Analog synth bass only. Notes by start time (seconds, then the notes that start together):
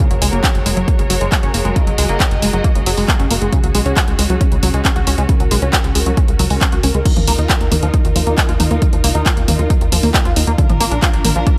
0.11 F#1
0.22 C#2
0.33 F#1
0.55 F#1
0.66 F#1
0.77 F#1
0.99 F#1
1.10 F#1
1.21 F#1
1.43 F#1
1.54 F#1
1.65 F#1
1.87 F#1
1.98 C#2
2.09 F#1
2.31 F#1
2.42 F#1
2.53 F#1
2.75 F#1
2.86 F#1
2.97 F#1
3.19 F#1
3.30 F#1
3.41 F#1
3.64 C#2
3.75 B1
3.86 C#2
4.08 C#2
4.19 C#2
4.30 C#2
4.52 C#2
4.63 C#2
4.74 C#2
4.96 C#2
5.07 C#2
5.18 C#2
5.40 C#2
5.51 B1
5.62 C#2
5.84 C#2
5.95 C#2
6.06 C#2
6.28 C#2
6.39 C#2
6.50 C#2
6.72 C#2
6.83 C#2
6.94 C#2
7.17 D#2
7.28 C#2
7.38 D#2
7.61 D#2
7.72 D#2
7.83 D#2
8.05 D#2
8.16 D#2
8.27 D#2
8.49 D#2
8.60 D#2
8.71 D#2
8.93 D#2
9.04 C#2
9.15 D#2
9.37 D#2
9.48 D#2
9.59 D#2
9.81 D#2
9.92 D#2
10.03 D#2
10.25 D#2
10.36 D#2
10.47 D#2
10.69 A#1
10.80 G#1
10.91 A#1
11.14 A#1
11.25 A#1
11.36 A#1